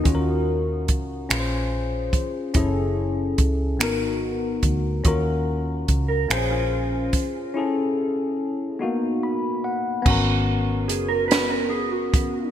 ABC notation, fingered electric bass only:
X:1
M:6/8
L:1/8
Q:3/8=48
K:Ebm
V:1 name="Fingered electric bass" clef=bass
E,,2 D,, B,,,2 z | G,,,2 D,, A,,,2 =D,, | E,,2 D,, B,,,2 z | z6 |
[K:Abdor] A,,,2 G,,,4 |]